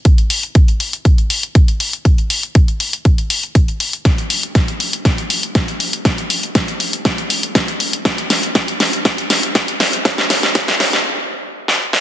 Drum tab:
HH |xxoxxxoxxxoxxxox|xxoxxxoxxxoxxxox|xxoxxxoxxxoxxxox|xxoxxxoxxxoxxxox|
SD |----------------|----------------|o---o---o---o---|o---o---o---o---|
BD |o---o---o---o---|o---o---o---o---|o---o---o---o---|o---o---o---o---|

HH |xxoxxxoxxxoxxxox|xxoxxxox--------|
SD |o-o-o-o-o-o-o-o-|oooooooo-----o-o|
BD |o---o---o---o---|o---o-----------|